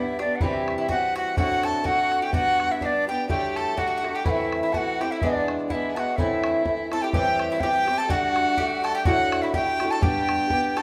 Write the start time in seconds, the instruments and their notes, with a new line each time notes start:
Already playing: steel-string acoustic guitar G3 B3 D4 G4, mandolin E4, fiddle E4
0.00 flute E5
0.19 mandolin D4, fiddle D4, steel-string acoustic guitar D4 G4, flute D5, bodhran
0.23 steel-string acoustic guitar B3
0.36 flute F#5
0.40 steel-string acoustic guitar C3 E3 G3 C4 G4, fiddle E4, mandolin E4, flute E5, bodhran
0.50 fiddle F#4, bodhran
0.60 fiddle E4
0.68 bodhran
0.78 fiddle E4, mandolin E4, flute E5
0.88 steel-string acoustic guitar E3 G3 C4 G4, fiddle F#4, mandolin F#4, flute F#5, bodhran
1.15 fiddle F#4, mandolin F#4, flute F#5, bodhran
1.36 steel-string acoustic guitar D2 A2 D3 A3 C4 F#4, fiddle F#4, mandolin F#4, flute F#5, bodhran
1.51 bodhran
1.63 mandolin A4, flute A5, bodhran
1.84 steel-string acoustic guitar D3 A3 C4 F#4, mandolin F#4, fiddle F#4, flute F#5, bodhran
2.12 bodhran
2.22 mandolin G4, fiddle G4, flute G5
2.32 steel-string acoustic guitar G3 B3 D4, mandolin F#4, fiddle F#4, flute F#5, bodhran
2.47 bodhran
2.60 bodhran
2.71 fiddle E4, flute E5
2.81 steel-string acoustic guitar G3 B3 D4 G4, mandolin D4, fiddle D4, flute E5, bodhran
2.85 flute D5
3.07 steel-string acoustic guitar B3 D4 G4, fiddle G4, mandolin G4, flute G5
3.28 steel-string acoustic guitar D2 A2 D3 G3 A3 G4, fiddle G4, mandolin G4, flute G5, bodhran
3.56 fiddle A4, mandolin A4, flute A5, bodhran
3.76 steel-string acoustic guitar D3 G3 A3 G4, fiddle F#4, mandolin F#4, flute F#5, bodhran
3.88 mandolin F#4
3.98 mandolin F#4
4.03 steel-string acoustic guitar D3 G3 A3 G4, bodhran
4.12 fiddle G4 A4, mandolin G4, flute G5
4.24 steel-string acoustic guitar A2 E3 A3 C4 E4, fiddle E4, mandolin E4, flute F#5, bodhran
4.30 flute E5
4.36 fiddle F#4
4.40 bodhran
4.45 fiddle E4
4.53 bodhran
4.62 fiddle E4, mandolin E4, flute E5
4.73 steel-string acoustic guitar E3 A3 C4 E4, fiddle F#4, mandolin F#4, flute A5, bodhran
4.77 flute F#5
4.99 steel-string acoustic guitar C4 E4, fiddle G4, mandolin G4, flute G5, bodhran
5.03 steel-string acoustic guitar A3
5.11 fiddle E4, mandolin E4, flute E5
5.21 steel-string acoustic guitar E3 G#3 B3 D4, mandolin D4, fiddle D4, flute D5, bodhran
5.35 bodhran
5.48 bodhran
5.68 steel-string acoustic guitar E3 G#3, fiddle E4, mandolin E4, flute F#5, bodhran
5.72 steel-string acoustic guitar B3 D4, flute E5
5.89 fiddle G#4
5.95 steel-string acoustic guitar G#3 B3 D4, mandolin F#4, fiddle F#4, flute A5, bodhran
5.99 flute F#5
6.16 steel-string acoustic guitar A2 E3 A3 C4 E4, mandolin E4, fiddle E4, flute E5, bodhran
6.44 bodhran
6.65 steel-string acoustic guitar E3 A3 C4 E4, bodhran
6.91 steel-string acoustic guitar A3 C4 E4, fiddle A4, mandolin A4, flute A5, bodhran
7.02 fiddle G4, mandolin G4, flute G5
7.12 steel-string acoustic guitar A2 E3 G3 C4 G4, mandolin G4, fiddle G4, flute G5, bodhran
7.39 bodhran
7.50 mandolin E4, fiddle E4, flute E5
7.60 steel-string acoustic guitar E3 G3 C4, mandolin G4, fiddle G4, flute G5, bodhran
7.65 steel-string acoustic guitar G4
7.87 steel-string acoustic guitar G3 C4 G4, bodhran
7.98 mandolin A4, fiddle A4, flute A5
8.08 steel-string acoustic guitar G3 A3 D4, mandolin F#4, fiddle F#4, flute F#5, bodhran
8.36 bodhran
8.57 steel-string acoustic guitar G3 A3 D4, mandolin G4, bodhran
8.84 mandolin A4, flute A5, bodhran
8.95 mandolin G4, fiddle G4, flute G5
9.05 steel-string acoustic guitar D2 A2 D3 D4 E4 F#4, mandolin F#4, fiddle F#4, flute F#5, bodhran
9.32 bodhran
9.42 fiddle E4, mandolin E4, flute E5
9.53 steel-string acoustic guitar D3 D4 E4 F#4, mandolin G4, fiddle G4, flute G5, bodhran
9.80 steel-string acoustic guitar D3 D4 E4 F#4, bodhran
9.91 fiddle A4, mandolin A4, flute A5
10.01 steel-string acoustic guitar G3 B3 D4 G4, fiddle G4, mandolin G4, flute G5, bodhran
10.29 bodhran
10.49 steel-string acoustic guitar G3 B3 D4 G4, bodhran
10.76 steel-string acoustic guitar D4 G4, fiddle A4, mandolin A4, flute A5, bodhran